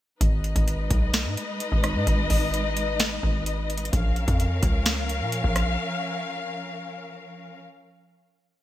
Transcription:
0.21 G#1 G#3 D#4 B4 D#5, kick, closed hi-hat
0.44 closed hi-hat
0.56 G#1, kick, closed hi-hat
0.68 closed hi-hat
0.91 B1, kick, closed hi-hat
1.14 snare, closed hi-hat
1.26 G#2
1.37 closed hi-hat
1.60 closed hi-hat
1.72 G#1, kick
1.84 cross-stick, closed hi-hat
1.95 G#2
2.07 G#1, kick, closed hi-hat
2.30 G#1, kick, open hi-hat
2.54 closed hi-hat
2.77 closed hi-hat
3.00 snare, closed hi-hat
3.23 G#1, kick
3.46 closed hi-hat
3.70 closed hi-hat
3.77 closed hi-hat
3.85 closed hi-hat
3.93 A#1 F3 C#4 A#4 F5, kick, closed hi-hat
4.16 closed hi-hat
4.28 F2, kick, closed hi-hat
4.40 closed hi-hat
4.63 C#2, kick, closed hi-hat
4.86 snare, closed hi-hat
5.09 closed hi-hat
5.21 A#2
5.32 closed hi-hat
5.44 A#1, kick
5.56 cross-stick, closed hi-hat

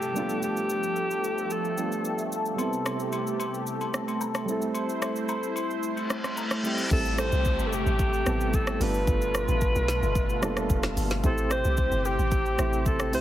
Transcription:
Already playing: C3 G3 A3 C4 E4 G4 A4, downlifter
0.02 shaker
0.13 F3 G3 A#3 D4 G4, shaker
0.18 B3 F4 A4
0.29 shaker
0.43 G4, shaker
0.57 shaker
0.69 shaker
0.83 shaker
0.96 shaker
1.11 shaker
1.24 shaker
1.38 shaker
1.50 A4, shaker
1.65 shaker
1.77 G3 B3 D4 F4 A4, shaker
1.92 shaker
2.05 shaker
2.18 shaker
2.32 shaker
2.46 shaker
2.56 C3 G3 B3 C4 G4, high agogo, shaker
2.61 E4 A4
2.73 shaker
2.86 cross-stick, high agogo, shaker
3.00 shaker
3.12 high agogo, shaker
3.27 shaker
3.40 high agogo, shaker
3.54 shaker
3.67 shaker
3.81 high agogo, shaker
3.94 cross-stick, shaker
4.08 high agogo, shaker
4.21 low woodblock, shaker
4.35 cross-stick, high agogo, shaker
4.45 G3 A3 C4 E4 C5, shaker
4.50 E4 A4
4.62 shaker
4.75 high agogo, shaker
4.89 shaker
5.02 cross-stick, high agogo, shaker
5.16 shaker
5.29 high agogo, low woodblock, shaker
5.43 shaker
5.56 high agogo, shaker
5.70 shaker
5.83 reverse cymbal, shaker
5.97 high agogo, shaker
6.10 cross-stick, shaker
6.24 cross-stick, high agogo, shaker
6.37 low woodblock, shaker
6.51 cross-stick, high agogo, shaker
6.63 G3 A3 C4 E4 G4, shaker
6.78 shaker
6.90 A1 C3 G3 A3 C4 E4 G4 A4, kick, crash, downlifter, shaker
7.00 A4
7.05 shaker
7.18 C5, cross-stick, shaker
7.32 C2, shaker
7.45 kick, shaker
7.59 G1, shaker
7.67 A4
7.73 G4, shaker
7.86 A1, shaker
7.99 kick, shaker
8.13 shaker
8.25 A1 G3 B3 C4 E4 A4, cross-stick, shaker
8.41 shaker
8.53 A4, kick, shaker
8.67 cross-stick, shaker
8.79 G1 B2 G3 A3 B3 D4 F4 A4 B4, open hi-hat, shaker
8.94 shaker
9.07 G1, kick, shaker
9.22 shaker
9.34 cross-stick, shaker
9.48 A1, shaker
9.61 kick, shaker
9.76 B1, shaker
9.88 snare, shaker
10.03 G1, shaker
10.15 kick, shaker
10.30 shaker
10.42 F1 G3 A#3 D4 F4 A4, cross-stick, shaker
10.49 B3
10.57 cross-stick, shaker
10.70 F1, kick, shaker
10.83 cross-stick, snare, shaker
10.97 G1, open hi-hat, shaker
11.10 snare, shaker
11.23 A1 C3 A3 C4 E4 G4 A4 C5, kick, shaker
11.38 shaker
11.51 C5, cross-stick, shaker
11.64 C2, shaker
11.77 kick, shaker
11.92 G1, shaker
12.05 G4, shaker
12.19 A1, shaker
12.31 kick, shaker
12.46 shaker
12.58 A1 A3 C4 E4 G4 C5, cross-stick, shaker
12.73 shaker
12.86 A4, kick, shaker
12.99 cross-stick, shaker
13.12 C2 A3 C4 E4 G4 C5, open hi-hat, shaker

